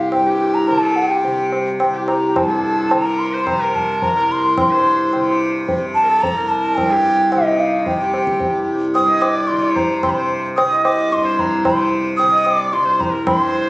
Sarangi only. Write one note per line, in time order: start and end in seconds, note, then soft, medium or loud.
0.00 0.25 G4 medium
0.26 0.65 G4 medium
0.69 0.83 A#4 medium
0.82 1.12 A4 medium
1.10 1.66 G4 medium
1.94 2.51 G4 medium
2.49 2.77 A4 medium
2.77 3.06 A4 medium
3.04 3.35 A#4 medium
3.33 3.62 C5 medium
3.61 4.15 A#4 medium
4.16 4.73 A#4 medium
4.71 5.54 C5 medium
6.03 6.10 A#4 soft
6.08 6.38 A4 medium
6.36 6.93 A#4 medium
6.92 7.48 G4 medium
7.46 8.00 D#4 medium
8.01 8.78 G4 medium
9.09 9.37 D#5 medium
9.35 9.65 D5 medium
9.63 10.16 C5 medium
10.17 10.42 C5 soft
10.70 11.26 D#5 medium
11.24 11.78 C5 medium
11.79 12.04 C5 medium
12.31 12.60 D#5 medium
12.58 12.87 D5 medium
12.85 13.14 C5 medium
13.13 13.39 A#4 soft
13.39 13.70 C5 medium